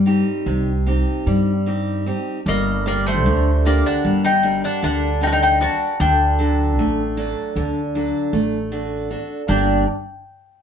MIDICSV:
0, 0, Header, 1, 5, 480
1, 0, Start_track
1, 0, Key_signature, -2, "minor"
1, 0, Tempo, 793651
1, 1489, Time_signature, 9, 3, 24, 8
1, 3398, Tempo, 771208
1, 6512, End_track
2, 0, Start_track
2, 0, Title_t, "Bouzouki"
2, 0, Program_c, 0, 25
2, 1503, Note_on_c, 0, 75, 94
2, 1720, Note_off_c, 0, 75, 0
2, 1741, Note_on_c, 0, 74, 69
2, 1847, Note_off_c, 0, 74, 0
2, 1862, Note_on_c, 0, 72, 86
2, 2190, Note_off_c, 0, 72, 0
2, 2219, Note_on_c, 0, 74, 74
2, 2336, Note_off_c, 0, 74, 0
2, 2338, Note_on_c, 0, 78, 93
2, 2555, Note_off_c, 0, 78, 0
2, 2572, Note_on_c, 0, 79, 96
2, 2805, Note_off_c, 0, 79, 0
2, 2808, Note_on_c, 0, 78, 86
2, 2916, Note_off_c, 0, 78, 0
2, 2929, Note_on_c, 0, 78, 97
2, 3147, Note_off_c, 0, 78, 0
2, 3163, Note_on_c, 0, 79, 98
2, 3186, Note_off_c, 0, 79, 0
2, 3188, Note_on_c, 0, 81, 78
2, 3218, Note_off_c, 0, 81, 0
2, 3222, Note_on_c, 0, 79, 92
2, 3274, Note_off_c, 0, 79, 0
2, 3281, Note_on_c, 0, 79, 95
2, 3390, Note_off_c, 0, 79, 0
2, 3401, Note_on_c, 0, 81, 92
2, 3639, Note_off_c, 0, 81, 0
2, 3642, Note_on_c, 0, 79, 94
2, 5303, Note_off_c, 0, 79, 0
2, 5808, Note_on_c, 0, 79, 76
2, 6028, Note_off_c, 0, 79, 0
2, 6512, End_track
3, 0, Start_track
3, 0, Title_t, "Mandolin"
3, 0, Program_c, 1, 25
3, 1501, Note_on_c, 1, 58, 71
3, 1719, Note_off_c, 1, 58, 0
3, 1740, Note_on_c, 1, 58, 69
3, 1846, Note_off_c, 1, 58, 0
3, 1854, Note_on_c, 1, 57, 64
3, 2186, Note_off_c, 1, 57, 0
3, 2215, Note_on_c, 1, 58, 60
3, 2323, Note_off_c, 1, 58, 0
3, 2336, Note_on_c, 1, 62, 66
3, 2554, Note_off_c, 1, 62, 0
3, 2568, Note_on_c, 1, 63, 78
3, 2788, Note_off_c, 1, 63, 0
3, 2812, Note_on_c, 1, 62, 74
3, 2919, Note_off_c, 1, 62, 0
3, 2926, Note_on_c, 1, 62, 80
3, 3145, Note_off_c, 1, 62, 0
3, 3166, Note_on_c, 1, 63, 77
3, 3185, Note_off_c, 1, 63, 0
3, 3188, Note_on_c, 1, 66, 71
3, 3216, Note_off_c, 1, 66, 0
3, 3219, Note_on_c, 1, 63, 75
3, 3274, Note_off_c, 1, 63, 0
3, 3285, Note_on_c, 1, 63, 88
3, 3391, Note_off_c, 1, 63, 0
3, 3393, Note_on_c, 1, 66, 83
3, 3621, Note_off_c, 1, 66, 0
3, 3636, Note_on_c, 1, 62, 77
3, 5301, Note_off_c, 1, 62, 0
3, 5803, Note_on_c, 1, 62, 65
3, 6025, Note_off_c, 1, 62, 0
3, 6512, End_track
4, 0, Start_track
4, 0, Title_t, "Steel-string acoustic guitar"
4, 0, Program_c, 2, 25
4, 0, Note_on_c, 2, 55, 64
4, 35, Note_on_c, 2, 60, 52
4, 38, Note_on_c, 2, 63, 47
4, 42, Note_on_c, 2, 67, 58
4, 268, Note_off_c, 2, 55, 0
4, 281, Note_on_c, 2, 48, 70
4, 425, Note_off_c, 2, 60, 0
4, 427, Note_off_c, 2, 63, 0
4, 429, Note_off_c, 2, 67, 0
4, 522, Note_on_c, 2, 60, 45
4, 527, Note_on_c, 2, 63, 42
4, 528, Note_on_c, 2, 67, 60
4, 751, Note_off_c, 2, 48, 0
4, 767, Note_on_c, 2, 55, 66
4, 910, Note_off_c, 2, 60, 0
4, 911, Note_off_c, 2, 63, 0
4, 913, Note_off_c, 2, 67, 0
4, 1006, Note_on_c, 2, 60, 49
4, 1011, Note_on_c, 2, 63, 38
4, 1013, Note_on_c, 2, 67, 59
4, 1235, Note_off_c, 2, 55, 0
4, 1241, Note_off_c, 2, 60, 0
4, 1243, Note_off_c, 2, 63, 0
4, 1247, Note_off_c, 2, 67, 0
4, 1247, Note_on_c, 2, 60, 47
4, 1254, Note_on_c, 2, 63, 44
4, 1254, Note_on_c, 2, 67, 56
4, 1441, Note_off_c, 2, 60, 0
4, 1442, Note_off_c, 2, 63, 0
4, 1444, Note_off_c, 2, 67, 0
4, 1490, Note_on_c, 2, 55, 71
4, 1728, Note_on_c, 2, 62, 53
4, 1734, Note_on_c, 2, 67, 41
4, 1734, Note_on_c, 2, 74, 59
4, 1955, Note_off_c, 2, 55, 0
4, 1971, Note_on_c, 2, 50, 68
4, 2113, Note_off_c, 2, 62, 0
4, 2114, Note_off_c, 2, 67, 0
4, 2115, Note_off_c, 2, 74, 0
4, 2209, Note_on_c, 2, 62, 54
4, 2216, Note_on_c, 2, 67, 47
4, 2216, Note_on_c, 2, 70, 61
4, 2433, Note_off_c, 2, 50, 0
4, 2447, Note_on_c, 2, 55, 71
4, 2591, Note_off_c, 2, 62, 0
4, 2592, Note_off_c, 2, 67, 0
4, 2594, Note_off_c, 2, 70, 0
4, 2679, Note_on_c, 2, 62, 49
4, 2682, Note_on_c, 2, 67, 43
4, 2688, Note_on_c, 2, 70, 51
4, 2908, Note_off_c, 2, 55, 0
4, 2918, Note_on_c, 2, 50, 62
4, 3061, Note_off_c, 2, 62, 0
4, 3064, Note_off_c, 2, 67, 0
4, 3065, Note_off_c, 2, 70, 0
4, 3151, Note_on_c, 2, 62, 49
4, 3153, Note_on_c, 2, 55, 40
4, 3156, Note_on_c, 2, 70, 48
4, 3380, Note_off_c, 2, 50, 0
4, 3383, Note_off_c, 2, 62, 0
4, 3387, Note_off_c, 2, 70, 0
4, 3390, Note_on_c, 2, 62, 42
4, 3394, Note_on_c, 2, 70, 58
4, 3538, Note_off_c, 2, 55, 0
4, 3587, Note_off_c, 2, 62, 0
4, 3589, Note_off_c, 2, 70, 0
4, 3635, Note_on_c, 2, 50, 66
4, 3877, Note_on_c, 2, 62, 46
4, 3880, Note_on_c, 2, 54, 48
4, 3884, Note_on_c, 2, 69, 59
4, 4107, Note_off_c, 2, 50, 0
4, 4126, Note_on_c, 2, 57, 65
4, 4266, Note_off_c, 2, 62, 0
4, 4268, Note_off_c, 2, 54, 0
4, 4270, Note_off_c, 2, 69, 0
4, 4364, Note_on_c, 2, 54, 47
4, 4365, Note_on_c, 2, 62, 46
4, 4368, Note_on_c, 2, 69, 58
4, 4593, Note_off_c, 2, 57, 0
4, 4609, Note_on_c, 2, 50, 66
4, 4750, Note_off_c, 2, 62, 0
4, 4751, Note_off_c, 2, 54, 0
4, 4753, Note_off_c, 2, 69, 0
4, 4850, Note_on_c, 2, 62, 50
4, 4852, Note_on_c, 2, 54, 40
4, 4858, Note_on_c, 2, 69, 48
4, 5074, Note_off_c, 2, 50, 0
4, 5085, Note_on_c, 2, 57, 58
4, 5233, Note_off_c, 2, 62, 0
4, 5234, Note_off_c, 2, 54, 0
4, 5235, Note_off_c, 2, 69, 0
4, 5327, Note_on_c, 2, 62, 49
4, 5328, Note_on_c, 2, 66, 42
4, 5334, Note_on_c, 2, 69, 47
4, 5551, Note_off_c, 2, 57, 0
4, 5561, Note_off_c, 2, 62, 0
4, 5563, Note_off_c, 2, 66, 0
4, 5565, Note_off_c, 2, 69, 0
4, 5568, Note_on_c, 2, 62, 44
4, 5570, Note_on_c, 2, 66, 38
4, 5575, Note_on_c, 2, 69, 46
4, 5758, Note_off_c, 2, 62, 0
4, 5760, Note_off_c, 2, 66, 0
4, 5761, Note_off_c, 2, 69, 0
4, 5800, Note_on_c, 2, 43, 55
4, 5806, Note_on_c, 2, 50, 41
4, 5807, Note_on_c, 2, 58, 48
4, 5810, Note_on_c, 2, 62, 42
4, 5811, Note_on_c, 2, 67, 45
4, 5814, Note_on_c, 2, 74, 59
4, 6024, Note_off_c, 2, 43, 0
4, 6025, Note_off_c, 2, 50, 0
4, 6028, Note_off_c, 2, 58, 0
4, 6028, Note_off_c, 2, 62, 0
4, 6030, Note_off_c, 2, 67, 0
4, 6031, Note_off_c, 2, 74, 0
4, 6512, End_track
5, 0, Start_track
5, 0, Title_t, "Upright bass"
5, 0, Program_c, 3, 32
5, 0, Note_on_c, 3, 43, 100
5, 135, Note_off_c, 3, 43, 0
5, 278, Note_on_c, 3, 36, 79
5, 619, Note_off_c, 3, 36, 0
5, 765, Note_on_c, 3, 43, 89
5, 1271, Note_off_c, 3, 43, 0
5, 1487, Note_on_c, 3, 31, 94
5, 1967, Note_off_c, 3, 31, 0
5, 1967, Note_on_c, 3, 38, 95
5, 2302, Note_off_c, 3, 38, 0
5, 2447, Note_on_c, 3, 31, 79
5, 2780, Note_off_c, 3, 31, 0
5, 2920, Note_on_c, 3, 38, 84
5, 3419, Note_off_c, 3, 38, 0
5, 3635, Note_on_c, 3, 38, 108
5, 4122, Note_off_c, 3, 38, 0
5, 4122, Note_on_c, 3, 33, 87
5, 4461, Note_off_c, 3, 33, 0
5, 4604, Note_on_c, 3, 38, 80
5, 4942, Note_off_c, 3, 38, 0
5, 5086, Note_on_c, 3, 33, 80
5, 5588, Note_off_c, 3, 33, 0
5, 5806, Note_on_c, 3, 31, 92
5, 6027, Note_off_c, 3, 31, 0
5, 6512, End_track
0, 0, End_of_file